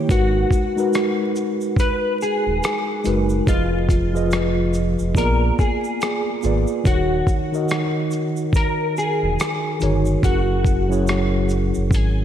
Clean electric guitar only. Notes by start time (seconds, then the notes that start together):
0.11 F#4
1.80 B4
2.22 G#4
3.48 F4
5.17 A#4
5.60 G#4
6.86 F#4
8.56 A#4
8.98 G#4
10.24 F#4
11.94 G#4